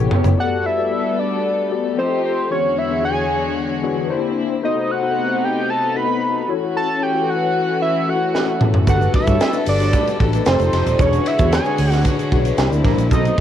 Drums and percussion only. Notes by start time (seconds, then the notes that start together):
0.11 floor tom
0.24 floor tom, shaker
8.35 snare
8.61 mid tom
8.74 floor tom
8.87 kick, ride, shaker
9.02 shaker
9.14 kick, ride
9.27 kick, ride, shaker
9.40 snare, ride, shaker
9.53 ride, shaker
9.66 open hi-hat, ride, shaker
9.80 ride, shaker
9.93 kick, hi-hat pedal, ride, shaker
10.07 ride, shaker
10.20 kick, ride
10.33 ride, shaker
10.46 snare, ride, shaker
10.60 ride, shaker
10.73 snare, ride
10.87 ride, shaker
10.99 kick, ride, shaker
11.13 ride, shaker
11.26 ride
11.39 kick, ride, shaker
11.53 snare, ride, shaker
11.65 ride, shaker
11.78 open hi-hat, ride, shaker
11.92 snare, ride, shaker
12.05 kick, hi-hat pedal, ride, shaker
12.19 ride, shaker
12.32 kick, ride
12.45 ride, shaker
12.58 snare, ride, shaker
12.73 shaker
12.85 kick, snare, ride
12.99 ride, shaker
13.11 kick, ride, shaker
13.25 ride, shaker